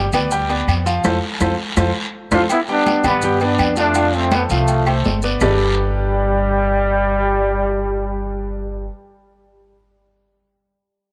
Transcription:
0.12 0.64 D2 loud
0.12 0.29 B3 medium
0.12 0.29 B4 medium
0.12 0.29 D5 medium
0.12 high conga soft
0.12 low conga medium
0.12 low agogo loud
0.12 short guiro medium
0.12 claves medium
0.12 maracas medium
0.31 0.47 G3 medium
0.31 0.47 G4 medium
0.31 0.47 G5 medium
0.31 high conga soft
0.31 long guiro medium
0.31 maracas medium
0.49 0.80 B3 medium
0.49 0.80 B4 medium
0.49 0.80 D5 medium
0.49 high conga soft
0.49 low agogo medium
0.49 maracas soft
0.67 1.02 F2 loud
0.67 high conga soft
0.67 low agogo loud
0.67 short guiro medium
0.67 claves medium
0.67 maracas soft
0.86 1.01 F3 medium
0.86 1.01 F4 medium
0.86 1.02 F5 medium
0.86 short guiro medium
0.86 maracas medium
1.04 1.18 F2 loud
1.04 1.16 F4 loud
1.04 1.16 A4 loud
1.04 1.16 C5 loud
1.04 high conga loud
1.04 high timbale loud
1.04 long guiro loud
1.04 claves loud
1.04 maracas loud
1.40 1.54 F2 loud
1.40 1.53 F4 medium
1.40 1.53 A4 medium
1.40 1.53 C5 loud
1.40 high conga loud
1.40 high timbale loud
1.40 claves medium
1.40 maracas loud
1.76 1.90 F2 loud
1.76 1.89 F4 loud
1.76 1.89 A4 medium
1.76 1.89 C5 loud
1.76 high conga loud
1.76 high timbale loud
1.76 long guiro loud
1.76 claves loud
1.76 maracas loud
2.31 2.45 F2 loud
2.31 2.40 D4 medium
2.31 2.44 F4 medium
2.31 2.41 F4 loud
2.31 2.44 A4 loud
2.31 2.44 C5 loud
2.31 high conga loud
2.31 high timbale loud
2.31 long guiro loud
2.31 claves loud
2.31 maracas loud
2.50 2.59 B3 medium
2.50 2.60 E4 loud
2.50 high conga soft
2.50 low agogo loud
2.50 long guiro medium
2.50 claves medium
2.50 maracas medium
2.68 2.98 G3 medium
2.68 3.03 B3 medium
2.68 3.03 D4 loud
2.68 2.99 G4 medium
2.68 2.99 G5 medium
2.68 high conga soft
2.68 maracas soft
2.86 high conga loud
2.86 low agogo medium
2.86 short guiro medium
2.86 maracas soft
3.04 3.55 G2 loud
3.04 3.40 G3 medium
3.04 3.20 B3 medium
3.04 3.40 B3 loud
3.04 3.20 B4 medium
3.04 3.20 D5 medium
3.04 high conga soft
3.04 low conga medium
3.04 low agogo loud
3.04 short guiro medium
3.04 claves medium
3.04 maracas medium
3.22 3.38 G3 medium
3.22 3.39 G4 medium
3.22 3.39 G5 medium
3.22 high conga soft
3.22 low conga medium
3.22 long guiro medium
3.22 maracas medium
3.40 3.71 B3 medium
3.40 3.78 B3 medium
3.40 3.77 D4 medium
3.40 3.72 B4 medium
3.40 3.72 D5 medium
3.40 high conga soft
3.40 low agogo medium
3.40 maracas soft
3.58 4.44 F2 loud
3.58 high conga soft
3.58 low agogo loud
3.58 short guiro medium
3.58 claves medium
3.58 maracas soft
3.76 3.92 F3 loud
3.76 4.12 A3 medium
3.76 4.12 D4 loud
3.76 3.92 F4 medium
3.76 3.93 F5 medium
3.76 short guiro medium
3.76 maracas medium
3.94 4.25 F3 medium
3.94 4.25 F4 medium
3.94 4.25 F5 loud
3.94 high conga soft
3.94 low agogo medium
3.94 long guiro medium
3.94 maracas medium
4.13 4.33 A3 medium
4.13 4.33 C4 loud
4.13 high conga soft
4.13 maracas soft
4.31 4.42 F3 medium
4.31 4.47 A3 medium
4.31 4.41 B3 loud
4.31 4.47 A4 medium
4.31 4.48 C5 medium
4.31 high conga loud
4.31 low agogo loud
4.31 short guiro medium
4.31 claves medium
4.31 maracas soft
4.50 5.01 C2 loud
4.50 4.81 F3 medium
4.50 5.02 F3 medium
4.50 5.02 A3 medium
4.50 4.81 F4 medium
4.50 4.81 F5 medium
4.50 high conga soft
4.50 short guiro medium
4.50 maracas medium
4.68 high conga soft
4.68 low agogo medium
4.68 long guiro medium
4.68 maracas medium
4.86 5.17 A3 medium
4.86 5.17 A4 medium
4.86 5.17 C5 medium
4.86 high conga soft
4.86 low agogo loud
4.86 claves medium
4.86 maracas soft
5.04 5.37 G1 medium
5.04 high conga medium
5.04 low timbale medium
5.04 short guiro medium
5.04 maracas soft
5.22 5.39 B3 medium
5.22 5.39 B4 medium
5.22 5.39 D5 medium
5.22 high conga soft
5.22 short guiro medium
5.22 maracas medium
5.40 8.86 G1 medium
5.40 8.86 G3 loud
5.40 8.88 G3 loud
5.40 8.87 D4 medium
5.40 8.87 G4 medium
5.40 8.87 A4 medium
5.40 8.88 B4 medium
5.40 8.87 D5 loud
5.40 low conga loud
5.40 low timbale loud
5.40 long guiro loud
5.40 claves loud
5.40 maracas medium

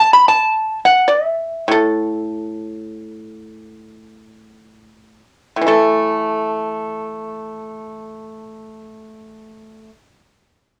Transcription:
0.00 0.11 A5 medium
0.13 0.28 B5 medium
0.28 0.78 A5 medium
0.85 1.08 F#5 medium
1.08 1.26 D5 soft
1.26 1.66 E5 soft
1.68 5.21 A2 soft
1.68 4.06 A4 soft
5.56 9.80 A2 soft
5.61 9.85 E3 soft
5.67 9.90 A3 soft
5.67 9.87 A4 soft

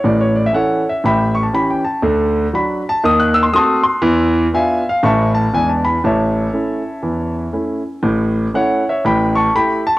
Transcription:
0.04 0.46 A1 medium
0.04 0.46 A2 medium
0.04 0.19 D5 medium
0.21 0.35 C#5 medium
0.36 0.44 D5 medium
0.46 0.55 E5 medium
0.53 0.81 E3 soft
0.53 0.81 C#4 soft
0.53 0.81 E4 soft
0.53 0.85 A4 medium
0.53 0.86 C#5 medium
0.53 0.82 F#5 medium
0.89 1.02 E5 medium
1.04 1.46 A1 medium
1.04 1.46 A2 medium
1.04 1.33 E5 medium
1.04 1.33 G5 medium
1.04 1.30 B5 medium
1.35 1.44 C#6 medium
1.43 1.53 A5 medium
1.53 1.81 E3 soft
1.53 1.81 C#4 soft
1.53 1.81 G4 soft
1.53 1.69 B5 medium
1.70 1.85 G5 soft
1.84 2.01 A5 medium
2.02 2.45 D2 medium
2.02 2.46 D3 medium
2.53 2.81 F#3 soft
2.53 2.81 D4 soft
2.53 2.81 F#4 soft
2.53 2.83 B5 medium
2.89 3.02 A5 medium
3.04 3.46 D#2 medium
3.04 3.46 D#3 medium
3.04 3.19 D#6 medium
3.20 3.34 F#6 medium
3.34 3.44 E6 loud
3.43 3.53 C6 medium
3.53 3.80 A3 soft
3.53 3.81 C4 soft
3.53 3.82 F#4 soft
3.53 3.83 A5 medium
3.53 3.82 C6 medium
3.53 3.79 D#6 medium
3.83 4.00 C6 medium
4.02 4.45 E2 medium
4.02 4.45 E3 medium
4.53 4.81 B3 soft
4.53 4.81 D4 soft
4.53 4.82 F4 soft
4.53 4.85 E5 medium
4.53 4.85 F5 medium
4.53 4.82 G#5 medium
4.89 5.02 F5 medium
5.03 5.46 A1 medium
5.03 5.46 A2 medium
5.03 5.31 A3 soft
5.03 5.31 C#4 soft
5.03 5.32 E4 soft
5.03 5.32 E5 medium
5.03 5.33 A5 medium
5.03 5.29 C#6 medium
5.35 5.51 A5 medium
5.53 5.96 E2 medium
5.53 5.96 E3 medium
5.53 5.81 G#3 soft
5.53 5.81 D4 soft
5.53 5.82 E4 soft
5.53 5.69 G#5 medium
5.70 5.84 A5 medium
5.85 6.01 B5 medium
6.04 6.46 A1 medium
6.04 6.46 A2 medium
6.04 7.51 C#5 medium
6.04 7.51 E5 medium
6.04 7.32 A5 medium
6.53 6.81 A3 soft
6.53 6.81 C#4 soft
6.53 6.81 E4 soft
7.03 7.46 E2 soft
7.03 7.45 E3 soft
7.53 7.81 A3 soft
7.53 7.81 C#4 soft
7.53 7.81 E4 soft
8.03 8.46 A1 medium
8.03 8.46 A2 medium
8.54 8.81 A3 soft
8.54 8.82 C#4 soft
8.54 8.82 E4 soft
8.54 8.86 C#5 medium
8.54 8.83 F#5 medium
8.89 9.04 C#5 medium
8.89 9.02 E5 medium
9.05 9.47 A1 medium
9.05 9.47 A2 medium
9.05 9.33 G5 medium
9.05 9.31 B5 medium
9.35 9.54 A5 medium
9.35 9.51 C#6 medium
9.55 9.82 A3 soft
9.55 9.82 E4 soft
9.55 9.83 G4 soft
9.55 9.83 G5 medium
9.55 9.80 B5 medium
9.87 9.95 A5 medium

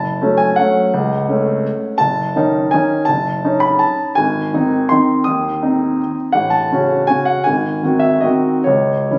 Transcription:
0.00 0.21 F#1 soft
0.00 0.39 A5 medium
0.21 0.55 F#3 soft
0.21 0.55 A3 soft
0.21 0.55 C#4 soft
0.37 0.57 G#5 medium
0.56 0.91 F#3 soft
0.56 0.91 A3 soft
0.56 0.91 C#4 soft
0.56 1.99 F#5 medium
0.94 1.28 C#2 medium
1.28 1.96 A3 soft
1.28 1.96 C#4 soft
1.98 2.35 F#1 soft
1.98 2.72 A5 medium
2.36 2.69 D#3 soft
2.36 2.70 C#4 soft
2.36 2.70 D#4 soft
2.71 3.05 D#3 soft
2.71 3.06 C#4 soft
2.71 3.06 D#4 soft
2.71 3.08 G#5 medium
3.05 3.43 F#1 soft
3.05 3.61 A5 medium
3.45 4.14 C#4 soft
3.45 4.14 D#4 soft
3.60 3.80 B5 medium
3.79 4.16 A5 medium
4.15 4.53 G#1 soft
4.15 4.90 G#5 medium
4.54 4.87 D#3 soft
4.54 4.87 C4 soft
4.54 4.87 D#4 soft
4.89 5.23 D#3 soft
4.89 5.23 C4 soft
4.89 5.23 D#4 soft
4.89 5.25 C6 medium
5.24 5.61 D#2 soft
5.24 6.16 D#6 medium
5.62 6.31 C4 soft
5.62 6.32 D#4 soft
6.32 6.71 A1 soft
6.32 6.52 F#5 medium
6.50 7.08 A5 medium
6.72 7.06 C#3 soft
6.72 7.06 C#4 soft
6.72 7.06 F#4 soft
7.07 7.43 C#3 soft
7.07 7.43 C#4 soft
7.07 7.43 F#4 soft
7.07 7.27 G#5 medium
7.25 7.45 F#5 medium
7.44 7.82 G#1 soft
7.44 8.01 G#5 medium
7.83 8.19 D#3 soft
7.83 8.19 C4 soft
7.83 8.20 F#4 soft
8.00 8.21 E5 medium
8.21 8.62 D#3 soft
8.21 8.62 C4 soft
8.21 8.63 F#4 soft
8.21 8.65 D#5 soft
8.64 9.09 C#2 soft
8.64 9.19 C#5 medium
9.11 9.19 E3 soft
9.11 9.19 C#4 soft
9.11 9.19 E4 soft

